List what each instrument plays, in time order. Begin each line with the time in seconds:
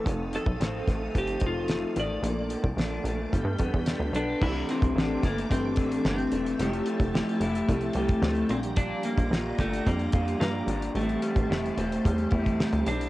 Already playing: clean electric guitar E3 A3 C4, string machine A4
0.04 analog synth bass F1, clean electric guitar F2, tonewheel organ F3 C4 D#4 A4, string machine F5 D#6, kick, closed hi-hat
0.33 clean electric guitar D#3, electric slide guitar A4, closed hi-hat
0.46 analog synth bass B1, kick
0.60 analog synth bass A1, tonewheel organ F3 C4 D#4 A4, clean electric guitar C4, snare, closed hi-hat
0.88 analog synth bass A1, clean electric guitar A3, kick, snare, closed hi-hat
1.13 analog synth bass G1, tonewheel organ F3 C4 D#4 A4, clean electric guitar C4, kick, closed hi-hat
1.18 electric slide guitar G4
1.27 closed hi-hat
1.40 analog synth bass F1, clean electric guitar D#3, kick, closed hi-hat
1.47 electric slide guitar F4
1.68 clean electric guitar A3, snare, closed hi-hat
1.96 analog synth bass A1, clean electric guitar D#3, electric slide guitar D5, closed hi-hat
2.22 analog synth bass A#1, clean electric guitar A#2, tonewheel organ F3 A#3 D4 A4, string machine A#3 A5 D6, closed hi-hat
2.50 clean electric guitar F3, closed hi-hat
2.64 analog synth bass C2, kick
2.77 analog synth bass A#1, tonewheel organ F3 A#3 D4 A4, clean electric guitar D4, snare, closed hi-hat
3.04 analog synth bass A#1, clean electric guitar A3, closed hi-hat
3.31 analog synth bass G1, tonewheel organ G3 B3 D4 A4, clean electric guitar G3, string machine A4 G5 B5, kick, closed hi-hat
3.45 analog synth bass G2
3.58 analog synth bass F2, clean electric guitar B3, kick, closed hi-hat
3.74 analog synth bass E2, kick
3.86 clean electric guitar D4, snare, closed hi-hat
3.99 analog synth bass D2
4.12 analog synth bass B1, clean electric guitar B3, electric slide guitar D4, closed hi-hat
4.41 analog synth bass C2, clean electric guitar C3 D4, tonewheel organ E3 A3 C4 D4 G4, electric slide guitar E4, string machine A4 E5 D6, kick, crash
4.69 clean electric guitar E3, electric slide guitar C4, closed hi-hat
4.82 analog synth bass C2, kick, closed hi-hat
4.95 analog synth bass A1, clean electric guitar D4, snare
5.23 analog synth bass G1, clean electric guitar A3, electric slide guitar A#3, kick, snare, closed hi-hat
5.39 closed hi-hat
5.50 analog synth bass G1, tonewheel organ E3 A3 C4 D4 G4, clean electric guitar E3, electric slide guitar C4, kick, closed hi-hat
5.76 analog synth bass A1, clean electric guitar D4, kick, closed hi-hat
5.92 closed hi-hat
6.05 analog synth bass G1, clean electric guitar E3, electric slide guitar C4, snare
6.18 closed hi-hat
6.32 analog synth bass E1, clean electric guitar A3, closed hi-hat
6.46 closed hi-hat
6.58 analog synth bass F1, tonewheel organ F3 A3 C4 E4 G4, clean electric guitar F3 G4, electric slide guitar A3, string machine G4 A5, closed hi-hat
6.73 closed hi-hat
6.86 clean electric guitar A3, closed hi-hat
7.00 analog synth bass F1, kick, closed hi-hat
7.14 clean electric guitar G4, snare
7.29 closed hi-hat
7.40 analog synth bass F1, clean electric guitar E4, closed hi-hat
7.55 closed hi-hat
7.67 analog synth bass C2, tonewheel organ F3 A3 C4 E4 G4, clean electric guitar A3, kick, closed hi-hat
7.81 closed hi-hat
7.93 analog synth bass C2, clean electric guitar G4, closed hi-hat
8.09 kick, closed hi-hat
8.22 analog synth bass D2, clean electric guitar A3, snare
8.35 closed hi-hat
8.48 analog synth bass A#1, clean electric guitar A#2, tonewheel organ F3 G3 A#3 D4 G4, electric slide guitar C4, string machine D5 A#5, closed hi-hat
8.63 closed hi-hat
8.76 clean electric guitar A#2 F4, electric slide guitar D4, kick, closed hi-hat
9.03 clean electric guitar G3, electric slide guitar A#3, closed hi-hat
9.18 analog synth bass A#1, kick, closed hi-hat
9.30 analog synth bass A#1, clean electric guitar F4, snare
9.58 analog synth bass G1, electric slide guitar A3, clean electric guitar D4, kick, snare, closed hi-hat
9.73 closed hi-hat
9.85 analog synth bass F2, tonewheel organ F3 G3 A#3 D4 G4, clean electric guitar G3, electric slide guitar A#3, kick, closed hi-hat
9.99 closed hi-hat
10.12 analog synth bass F2, clean electric guitar F4, kick, closed hi-hat
10.28 closed hi-hat
10.40 analog synth bass G2, clean electric guitar G3, electric slide guitar A#3, snare
10.67 analog synth bass G#1, clean electric guitar D4, closed hi-hat
10.82 closed hi-hat
10.94 analog synth bass A1, clean electric guitar A2 E4, tonewheel organ E3 G3 A3 C4 G4, electric slide guitar A3, string machine G4 C5 A5, closed hi-hat
11.09 closed hi-hat
11.22 clean electric guitar G3, closed hi-hat
11.36 analog synth bass A1, kick, closed hi-hat
11.50 analog synth bass F1, clean electric guitar E4, snare
11.66 closed hi-hat
11.77 analog synth bass E1, clean electric guitar C4, closed hi-hat
11.92 closed hi-hat
12.04 analog synth bass E2, tonewheel organ E3 G3 A3 B3 G4, clean electric guitar G3, kick, closed hi-hat
12.12 tonewheel organ C4
12.18 closed hi-hat
12.31 analog synth bass E2, clean electric guitar E4, kick, closed hi-hat
12.46 kick, closed hi-hat
12.60 clean electric guitar G3, snare
12.72 analog synth bass D2, closed hi-hat
12.86 analog synth bass B1, clean electric guitar C4, electric slide guitar D4, closed hi-hat
13.01 closed hi-hat